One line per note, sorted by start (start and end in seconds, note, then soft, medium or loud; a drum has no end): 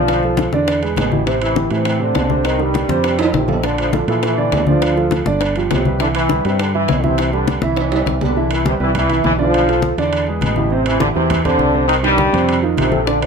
0.00 0.48 B1 medium
0.00 0.18 D3 medium
0.00 0.50 F3 medium
0.00 0.18 D4 medium
0.00 0.50 F4 medium
0.00 0.19 D5 medium
0.08 high bongo medium
0.08 high conga soft
0.08 high timbale medium
0.23 0.48 F3 medium
0.23 0.48 F4 medium
0.23 0.48 A4 medium
0.23 high bongo soft
0.23 high conga soft
0.37 high bongo medium
0.37 high conga medium
0.37 high timbale medium
0.37 low timbale medium
0.53 0.94 E2 medium
0.53 0.78 D3 medium
0.53 0.77 D4 medium
0.53 0.78 D5 medium
0.53 high bongo soft
0.53 high conga medium
0.67 high bongo medium
0.67 high conga soft
0.67 high timbale medium
0.82 1.07 G#3 medium
0.82 1.07 G#4 medium
0.82 1.07 B4 medium
0.82 high bongo soft
0.82 high conga soft
0.82 high timbale medium
0.96 1.66 A1 medium
0.96 1.26 B2 medium
0.96 1.26 B3 medium
0.96 high bongo medium
0.96 low bongo medium
0.96 high conga medium
0.96 high timbale medium
0.96 low timbale medium
1.12 1.24 E3 medium
1.12 1.24 E4 medium
1.12 1.24 G4 medium
1.12 high conga medium
1.26 1.51 C3 medium
1.26 1.41 C3 medium
1.26 1.51 C4 medium
1.26 1.41 C4 medium
1.26 1.51 C5 medium
1.26 high bongo medium
1.26 high conga soft
1.26 high timbale medium
1.41 1.70 E3 medium
1.41 1.70 E4 medium
1.41 high conga soft
1.41 high timbale medium
1.55 1.68 E3 medium
1.55 1.68 E4 medium
1.55 1.68 G4 medium
1.55 high bongo medium
1.55 high conga medium
1.55 low timbale medium
1.70 2.12 A2 medium
1.70 1.99 C3 medium
1.70 1.95 E3 medium
1.70 1.99 C4 medium
1.70 1.95 E4 medium
1.70 1.95 G4 medium
1.70 high timbale medium
1.85 high bongo medium
1.85 high conga soft
1.85 high timbale medium
1.99 2.24 C3 medium
1.99 2.46 D3 medium
1.99 2.24 C4 medium
1.99 2.46 D4 medium
1.99 2.25 C5 medium
1.99 high conga soft
2.15 2.84 C2 medium
2.15 high bongo medium
2.15 low bongo medium
2.15 high conga medium
2.15 high timbale medium
2.15 low timbale medium
2.30 2.54 C3 medium
2.30 2.54 C4 medium
2.30 2.54 C5 medium
2.30 high conga medium
2.45 2.61 D#3 medium
2.45 2.61 D#4 medium
2.45 high bongo medium
2.45 high conga soft
2.45 high timbale medium
2.58 3.20 G2 medium
2.58 2.83 D#3 medium
2.58 3.19 G3 medium
2.58 2.84 D#4 medium
2.58 2.84 G4 medium
2.58 high bongo soft
2.58 high conga soft
2.74 high bongo medium
2.74 high conga medium
2.74 high timbale medium
2.74 low timbale medium
2.88 3.31 F2 medium
2.88 3.13 C3 medium
2.88 3.13 C4 medium
2.88 3.14 C5 medium
2.88 high bongo soft
2.88 high conga medium
3.04 high bongo medium
3.04 high timbale medium
3.19 3.43 D#3 medium
3.19 3.43 D#4 medium
3.19 3.43 F4 medium
3.19 high bongo soft
3.19 high conga soft
3.19 high timbale loud
3.33 4.02 A#1 medium
3.33 3.62 C3 medium
3.33 3.62 C4 medium
3.33 high bongo medium
3.33 low bongo medium
3.33 high conga medium
3.48 3.61 F3 medium
3.48 3.61 F4 medium
3.48 3.61 A4 medium
3.48 high conga medium
3.48 low timbale medium
3.63 3.88 D3 medium
3.63 3.78 D3 medium
3.63 3.88 D4 medium
3.63 3.78 D4 medium
3.63 3.88 D5 medium
3.63 high bongo medium
3.63 high conga soft
3.63 high timbale medium
3.78 3.92 F3 medium
3.78 3.93 F4 medium
3.78 high conga soft
3.78 high timbale medium
3.93 4.08 D3 medium
3.93 4.05 F3 medium
3.93 4.08 D4 medium
3.93 4.05 F4 medium
3.93 4.06 A4 medium
3.93 high bongo medium
3.93 high conga medium
3.93 low timbale medium
4.07 4.49 A#2 medium
4.07 4.21 E3 medium
4.07 4.32 F3 medium
4.07 4.22 E4 medium
4.07 4.33 F4 medium
4.07 4.33 A4 medium
4.07 high timbale medium
4.23 4.64 E3 medium
4.23 4.64 E4 medium
4.23 high bongo medium
4.23 high conga soft
4.23 high timbale medium
4.37 4.62 D3 medium
4.37 4.61 D4 medium
4.37 4.62 D5 medium
4.37 high conga soft
4.52 5.21 D2 medium
4.52 high bongo medium
4.52 low bongo medium
4.52 high conga medium
4.52 high timbale medium
4.52 low timbale medium
4.67 4.91 D3 medium
4.67 5.22 F3 medium
4.67 4.92 D4 medium
4.67 5.23 F4 medium
4.67 4.92 D5 medium
4.67 high conga medium
4.82 high bongo medium
4.82 high timbale medium
4.96 5.21 F3 medium
4.96 5.21 F4 medium
4.96 5.21 A4 medium
4.96 high bongo soft
4.96 high conga soft
5.11 high bongo medium
5.11 high conga medium
5.11 high timbale medium
5.11 low timbale medium
5.26 5.68 G1 medium
5.26 5.50 D3 medium
5.26 5.51 D4 medium
5.26 5.51 D5 medium
5.26 high bongo soft
5.26 high conga medium
5.41 high bongo medium
5.41 high conga soft
5.41 high timbale medium
5.56 5.80 F3 medium
5.56 5.81 F4 medium
5.56 5.81 G4 medium
5.56 high bongo soft
5.56 high conga soft
5.56 high timbale medium
5.71 6.39 C2 medium
5.71 5.99 C3 medium
5.71 5.99 C4 medium
5.71 high bongo medium
5.71 low bongo medium
5.71 high conga medium
5.71 high timbale medium
5.71 low timbale medium
5.85 5.98 G3 medium
5.85 5.98 G4 medium
5.85 5.98 B4 medium
5.85 high conga medium
6.00 6.08 D3 medium
6.00 6.24 E3 medium
6.00 6.07 D4 medium
6.00 6.25 E4 medium
6.00 6.25 E5 medium
6.00 high bongo medium
6.00 high conga soft
6.00 high timbale medium
6.15 6.43 E3 medium
6.15 6.43 E4 medium
6.15 high conga soft
6.15 high timbale medium
6.29 6.42 G3 medium
6.29 6.42 G4 medium
6.29 6.42 B4 medium
6.29 high bongo medium
6.29 high conga medium
6.29 low timbale medium
6.45 6.86 G2 medium
6.45 6.60 C3 medium
6.45 6.69 G3 medium
6.45 6.60 C4 medium
6.45 6.69 G4 medium
6.45 6.69 B4 medium
6.45 high timbale medium
6.59 6.74 D3 medium
6.59 6.74 D4 medium
6.59 high bongo medium
6.59 high conga soft
6.59 high timbale medium
6.73 7.01 E3 medium
6.73 6.98 E3 medium
6.73 7.01 E4 medium
6.73 6.99 E4 medium
6.73 6.99 E5 medium
6.73 high conga soft
6.88 7.57 C2 medium
6.88 high bongo medium
6.88 low bongo medium
6.88 high conga medium
6.88 high timbale medium
6.88 low timbale medium
7.03 7.33 C3 medium
7.03 7.28 E3 medium
7.03 7.33 C4 medium
7.03 7.28 E4 medium
7.03 7.28 E5 medium
7.03 high conga medium
7.18 high bongo medium
7.18 high conga soft
7.18 high timbale medium
7.32 7.61 D3 medium
7.32 7.57 G3 medium
7.32 7.61 D4 medium
7.32 7.57 G4 medium
7.32 7.57 B4 medium
7.32 high bongo soft
7.32 high conga soft
7.48 high bongo medium
7.48 high conga medium
7.48 high timbale medium
7.48 low timbale medium
7.62 8.04 C2 medium
7.62 7.87 E3 medium
7.62 8.22 E3 medium
7.62 7.87 E4 medium
7.62 8.22 E4 medium
7.62 7.87 E5 medium
7.62 high bongo soft
7.62 high conga medium
7.76 high bongo medium
7.76 high conga soft
7.76 high timbale medium
7.91 8.16 G3 medium
7.91 8.16 G4 medium
7.91 8.16 B4 medium
7.91 high bongo soft
7.91 high conga soft
7.91 high timbale medium
8.06 8.75 C2 medium
8.06 8.14 C3 medium
8.06 8.14 C4 medium
8.06 high bongo medium
8.06 low bongo medium
8.06 high conga medium
8.21 8.50 D3 medium
8.21 8.33 G3 medium
8.21 8.50 D4 medium
8.21 8.34 G4 medium
8.21 8.34 B4 medium
8.21 high conga medium
8.21 low timbale medium
8.37 8.61 E3 medium
8.37 8.61 E4 medium
8.37 8.61 E5 medium
8.37 high conga soft
8.51 8.67 E3 medium
8.51 8.66 E4 medium
8.51 high conga soft
8.51 high timbale medium
8.66 8.74 C3 medium
8.66 8.78 G3 medium
8.66 8.74 C4 medium
8.66 8.78 G4 medium
8.66 8.78 B4 medium
8.66 high conga loud
8.80 9.21 C2 medium
8.80 8.89 E3 medium
8.80 9.04 G3 medium
8.80 8.89 E4 medium
8.80 9.04 G4 medium
8.80 9.05 B4 medium
8.80 high conga soft
8.95 9.24 E3 medium
8.95 9.23 E4 medium
8.95 high conga soft
8.95 low conga medium
8.95 high timbale medium
9.09 9.34 E3 medium
9.09 9.34 E4 medium
9.09 9.34 E5 medium
9.09 high conga soft
9.09 high timbale medium
9.24 9.92 B1 medium
9.24 9.32 E3 medium
9.24 9.31 E4 medium
9.24 high conga medium
9.24 low timbale medium
9.38 9.63 D3 medium
9.38 9.94 F3 loud
9.38 9.63 D4 medium
9.38 9.94 F4 medium
9.38 9.63 D5 medium
9.38 high conga soft
9.54 high conga soft
9.54 high timbale medium
9.68 9.93 F3 medium
9.68 9.93 F4 medium
9.68 9.93 A4 medium
9.68 high conga soft
9.68 high timbale medium
9.82 high conga loud
9.97 10.39 E2 medium
9.97 10.22 D3 medium
9.97 10.22 D4 medium
9.97 10.22 D5 loud
9.97 high conga soft
9.97 high timbale medium
10.12 high conga soft
10.12 high timbale medium
10.27 10.52 G#3 medium
10.27 10.52 G#4 medium
10.27 10.52 B4 medium
10.27 high conga soft
10.41 11.10 A1 medium
10.41 10.70 B2 medium
10.41 10.70 B3 medium
10.41 high conga medium
10.41 high timbale medium
10.56 10.69 E3 medium
10.56 10.69 E4 medium
10.56 10.69 G4 medium
10.56 high conga medium
10.70 10.95 C3 medium
10.70 10.86 C3 medium
10.70 10.96 C4 medium
10.70 10.87 C4 medium
10.70 10.96 C5 medium
10.70 high conga soft
10.86 11.01 E3 medium
10.86 11.01 E4 medium
10.86 high conga soft
10.86 high timbale medium
11.00 11.07 D3 medium
11.00 11.12 E3 medium
11.00 11.08 D4 medium
11.00 11.13 E4 medium
11.00 11.13 G4 medium
11.00 high conga loud
11.15 11.57 E2 medium
11.15 11.43 C3 medium
11.15 11.39 E3 medium
11.15 11.43 C4 medium
11.15 11.39 E4 medium
11.15 11.40 G4 medium
11.15 high conga soft
11.30 high conga soft
11.30 low conga medium
11.30 high timbale medium
11.44 11.69 C3 medium
11.44 11.86 D3 loud
11.44 11.69 C4 medium
11.44 11.86 D4 medium
11.44 11.69 C5 medium
11.44 high conga soft
11.44 low conga medium
11.44 high timbale medium
11.59 12.27 C2 medium
11.59 high conga medium
11.74 11.98 C3 medium
11.74 11.98 C4 medium
11.74 11.99 C5 medium
11.74 high conga soft
11.87 11.94 D#3 loud
11.87 11.95 D#4 medium
11.87 high conga soft
11.87 high timbale medium
12.03 12.59 G2 medium
12.03 12.27 D#3 medium
12.03 12.59 G3 loud
12.03 12.28 D#4 medium
12.03 12.28 G4 medium
12.03 high conga soft
12.03 high timbale medium
12.18 high conga loud
12.33 12.74 F2 medium
12.33 12.57 C3 medium
12.33 12.57 C4 medium
12.33 12.57 C5 medium
12.33 high conga soft
12.33 high timbale medium
12.48 high conga soft
12.48 high timbale medium
12.62 12.87 D#3 medium
12.62 12.87 D#4 medium
12.62 12.87 F4 medium
12.62 high conga soft
12.77 13.26 A#1 medium
12.77 13.04 C3 medium
12.77 13.05 C4 medium
12.77 high conga medium
12.77 high timbale medium
12.91 13.04 F3 medium
12.91 13.04 F4 medium
12.91 13.04 A4 medium
12.91 high conga medium
13.07 13.21 D3 medium
13.07 13.26 D3 medium
13.07 13.21 D4 medium
13.07 13.26 D4 medium
13.07 13.26 D5 medium
13.07 high bongo medium
13.07 high conga soft
13.21 13.26 F3 medium
13.21 13.26 F4 medium
13.21 high conga soft
13.21 high timbale medium